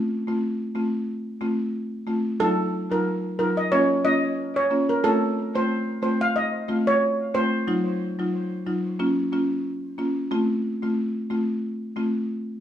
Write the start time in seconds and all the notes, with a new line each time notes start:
Already playing: A3 C4 F4
0.27 A3 C4 F4
0.75 A3 C4 F4
1.41 A3 C4 F4
2.07 A3 C4 F4
2.40 F#3 D#4 F4 A4
2.91 F#3 D#4 F4 A#4
3.39 F#3 D#4 F4 A#4
3.57 D#5
3.72 A#3 C#4 F4 C#5
4.05 A#3 C#4 F4 D#5
4.56 C#5
4.71 A#3 C#4 F4
4.89 A#4
5.04 A3 C4 F4 A4
5.55 A3 C4 F4 C5
6.02 A3 C4 F4 C5
6.21 F5
6.36 D#5
6.68 A3 C4 F4
6.87 C#5
7.34 A3 C4 F4 C5
7.67 F#3 D#4 F4
8.19 F#3 D#4 F4
8.66 F#3 D#4 F4
8.99 A#3 C#4 F4
9.32 A#3 C#4 F4
9.98 A#3 C#4 F4
10.31 A3 C4 F4
10.83 A3 C4 F4
11.30 A3 C4 F4
11.96 A3 C4 F4